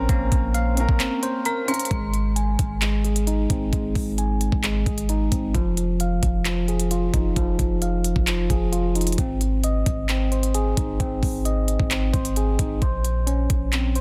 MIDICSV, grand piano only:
0, 0, Header, 1, 2, 480
1, 0, Start_track
1, 0, Key_signature, -4, "major"
1, 0, Tempo, 454545
1, 96, Time_signature, 4, 2, 24, 8
1, 14792, End_track
2, 0, Start_track
2, 0, Title_t, "Grand piano"
2, 0, Program_c, 0, 0
2, 0, Control_c, 0, 64, 127
2, 0, Note_on_c, 0, 60, 89
2, 0, Note_on_c, 0, 61, 77
2, 0, Note_on_c, 0, 70, 97
2, 586, Note_off_c, 0, 60, 0
2, 601, Note_off_c, 0, 61, 0
2, 615, Note_off_c, 0, 70, 0
2, 787, Note_on_c, 0, 60, 83
2, 816, Note_on_c, 0, 61, 81
2, 844, Note_on_c, 0, 70, 98
2, 1546, Note_off_c, 0, 60, 0
2, 1560, Note_off_c, 0, 61, 0
2, 1574, Note_off_c, 0, 70, 0
2, 1747, Note_on_c, 0, 60, 91
2, 1776, Note_on_c, 0, 61, 71
2, 1804, Note_on_c, 0, 70, 90
2, 1947, Note_off_c, 0, 60, 0
2, 1962, Note_off_c, 0, 61, 0
2, 1976, Note_off_c, 0, 70, 0
2, 2031, Control_c, 0, 64, 0
2, 2227, Control_c, 0, 64, 127
2, 5871, Control_c, 0, 64, 0
2, 14792, End_track
0, 0, End_of_file